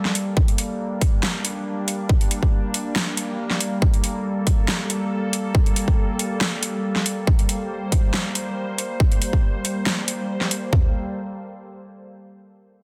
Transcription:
0.00 10.69 G3 medium
0.00 10.69 A#3 medium
0.00 0.36 A4 medium
0.00 downlifter medium
0.05 snare soft
0.15 closed hi-hat medium
0.37 3.81 D4 medium
0.37 kick loud
0.48 closed hi-hat soft
0.58 closed hi-hat medium
1.01 kick loud
1.01 closed hi-hat medium
1.23 snare loud
1.45 closed hi-hat medium
1.88 closed hi-hat medium
2.09 kick loud
2.21 closed hi-hat soft
2.31 closed hi-hat medium
2.43 kick medium
2.74 closed hi-hat medium
2.96 snare loud
3.17 closed hi-hat medium
3.50 snare soft
3.61 closed hi-hat medium
3.82 7.26 A4 medium
3.82 kick loud
3.94 closed hi-hat soft
4.04 closed hi-hat medium
4.47 kick loud
4.47 closed hi-hat medium
4.68 snare loud
4.90 closed hi-hat medium
5.33 closed hi-hat medium
5.55 kick loud
5.66 closed hi-hat soft
5.76 closed hi-hat medium
5.88 kick medium
6.19 closed hi-hat medium
6.41 snare loud
6.63 closed hi-hat medium
6.96 snare soft
7.06 closed hi-hat medium
7.27 10.72 C5 medium
7.27 kick loud
7.39 closed hi-hat soft
7.49 closed hi-hat medium
7.92 kick loud
7.92 closed hi-hat medium
8.14 snare loud
8.35 closed hi-hat medium
8.78 closed hi-hat medium
9.00 kick loud
9.12 closed hi-hat soft
9.22 closed hi-hat medium
9.33 kick medium
9.65 closed hi-hat medium
9.86 snare loud
10.08 closed hi-hat medium
10.41 snare soft
10.51 closed hi-hat medium
10.73 kick loud
10.73 floor tom loud

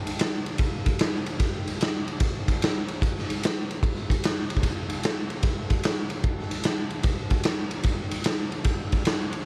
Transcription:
0.07 ride medium
0.19 snare loud
0.19 ride loud
0.46 ride medium
0.58 kick loud
0.58 ride medium
0.86 kick medium
0.86 ride medium
0.99 snare loud
0.99 ride loud
1.26 ride medium
1.40 kick medium
1.40 ride medium
1.67 ride medium
1.81 snare loud
1.81 ride medium
2.08 ride medium
2.20 kick loud
2.20 ride medium
2.48 kick medium
2.48 ride medium
2.62 snare loud
2.62 ride medium
2.88 ride medium
3.02 kick loud
3.02 ride medium
3.19 snare soft
3.30 ride medium
3.43 snare loud
3.43 ride loud
3.71 ride medium
3.83 kick loud
3.83 ride loud
4.10 kick medium
4.10 ride medium
4.24 snare loud
4.24 ride loud
4.50 ride medium
4.57 kick medium
4.63 kick medium
4.63 ride medium
4.90 ride medium
5.03 snare loud
5.03 ride medium
5.30 ride medium
5.43 kick loud
5.43 ride medium
5.70 kick medium
5.70 ride medium
5.84 snare loud
5.84 ride medium
6.10 ride medium
6.24 kick loud
6.24 ride medium
6.51 ride medium
6.63 snare loud
6.63 ride loud
6.91 ride medium
7.03 kick loud
7.03 ride medium
7.30 kick medium
7.30 ride medium
7.44 snare loud
7.44 ride loud
7.71 ride medium
7.83 kick loud
7.83 ride medium
8.11 ride medium
8.24 snare loud
8.24 ride loud
8.52 ride medium
8.64 kick loud
8.64 ride medium
8.92 kick medium
8.92 ride medium
9.05 snare loud
9.05 ride medium
9.33 ride medium

